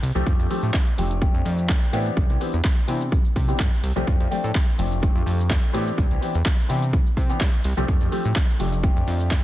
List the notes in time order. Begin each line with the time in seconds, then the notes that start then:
0.03 C2, open hi-hat
0.15 C2 F3 A3 C4 D4 G4, shaker
0.27 F2, kick, closed hi-hat, shaker
0.39 F2, closed hi-hat, shaker
0.50 F3 A3 C4 D4 G4, open hi-hat
0.63 A2, shaker
0.74 kick, clap, closed hi-hat, shaker
0.87 closed hi-hat, shaker
0.98 F1 F3 A3 C4 D4 G4, open hi-hat
1.11 closed hi-hat, shaker
1.21 F3 A3 C4 D4 G4, kick, closed hi-hat, shaker
1.34 F2, shaker
1.45 F2, open hi-hat
1.58 shaker
1.69 kick, clap, closed hi-hat, shaker
1.82 closed hi-hat, shaker
1.93 A2 E3 B3 C4 D4 G4, open hi-hat
2.06 shaker
2.17 C2, kick, closed hi-hat, shaker
2.30 C2, closed hi-hat, shaker
2.40 E3 B3 C4 D4 G4, open hi-hat
2.54 E2, closed hi-hat, shaker
2.65 kick, clap, closed hi-hat, shaker
2.77 closed hi-hat, shaker
2.88 C3 E3 B3 C4 D4 G4, open hi-hat
3.01 closed hi-hat, shaker
3.12 kick, closed hi-hat, shaker
3.25 closed hi-hat, shaker
3.36 C3, kick, open hi-hat
3.48 E3 B3 C4 D4 G4, shaker
3.60 G2, kick, clap, closed hi-hat, shaker
3.73 closed hi-hat, shaker
3.83 C2, open hi-hat
3.96 C2 F3 A3 C4 D4 G4, closed hi-hat, shaker
4.07 F2, kick, closed hi-hat, shaker
4.20 F2, closed hi-hat, shaker
4.31 F3 A3 C4 D4 G4, open hi-hat
4.44 A2, shaker
4.55 kick, clap, closed hi-hat, shaker
4.68 closed hi-hat, shaker
4.78 F1 F3 A3 C4 D4 G4, open hi-hat
4.92 closed hi-hat, shaker
5.01 F3 A3 C4 D4 G4, kick, closed hi-hat, shaker
5.15 F2, shaker
5.26 F2, open hi-hat
5.40 shaker
5.50 kick, clap, closed hi-hat, shaker
5.64 closed hi-hat, shaker
5.73 A2 E3 B3 C4 D4 G4, open hi-hat
5.88 shaker
5.98 C2, kick, closed hi-hat, shaker
6.11 C2, closed hi-hat, shaker
6.21 E3 B3 C4 D4 G4, open hi-hat
6.35 E2, shaker
6.46 kick, clap, closed hi-hat, shaker
6.59 closed hi-hat, shaker
6.69 C3 E3 B3 C4 D4 G4, open hi-hat
6.82 closed hi-hat, shaker
6.93 kick, closed hi-hat, shaker
7.06 shaker
7.17 C3, kick, open hi-hat
7.29 E3 B3 C4 D4 G4, shaker
7.41 G2, kick, clap, closed hi-hat, shaker
7.53 closed hi-hat, shaker
7.64 C2, open hi-hat
7.77 C2 F3 A3 C4 D4 G4, shaker
7.88 F2, kick, closed hi-hat, shaker
8.01 F2, closed hi-hat, shaker
8.11 F3 A3 C4 D4 G4, open hi-hat
8.25 A2, shaker
8.36 kick, clap, closed hi-hat, shaker
8.49 closed hi-hat, shaker
8.59 F1 F3 A3 C4 D4 G4, open hi-hat
8.73 closed hi-hat, shaker
8.82 F3 A3 C4 D4 G4, kick, closed hi-hat, shaker
8.96 F2, shaker
9.07 F2, open hi-hat
9.20 shaker
9.31 kick, clap, closed hi-hat, shaker